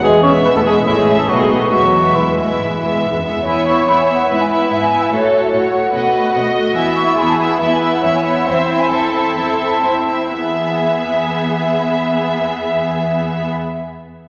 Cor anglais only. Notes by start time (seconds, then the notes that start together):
0.04 G#4
0.23 C#5
0.46 B4
0.57 A4
0.66 G#4
0.87 E4
0.98 G#4
1.19 A4
1.29 F#4
1.40 G#4
1.61 F#4
1.70 F#4
2.15 E4